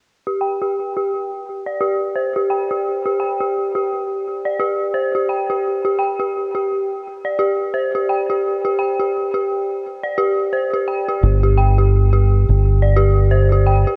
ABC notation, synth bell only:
X:1
M:4/4
L:1/16
Q:"Swing 16ths" 1/4=86
K:Cdor
V:1 name="Synth bell"
z G g G z G z3 d G2 c G g G | z G g G z G z3 d G2 c G g G | z G g G z G z3 d G2 c G g G | z G g G z G z3 d G2 c G g G |
z G g G z G z3 d G2 c G g G |]